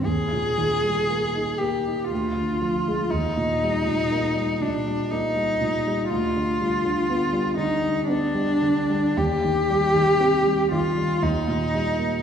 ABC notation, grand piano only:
X:1
M:3/4
L:1/16
Q:1/4=59
K:Eb
V:1 name="Grand piano" clef=bass
E,, B,, E, G, B, E B, E D,, D, F, A, | E,, B,, G, B,, B, G, B,, G, B, G, B,, G, | D,, D, G, D, =B, G, D, G, B, G, D, G, | E,, E, G, E, C G, E, G, E,, B,, G, B, |]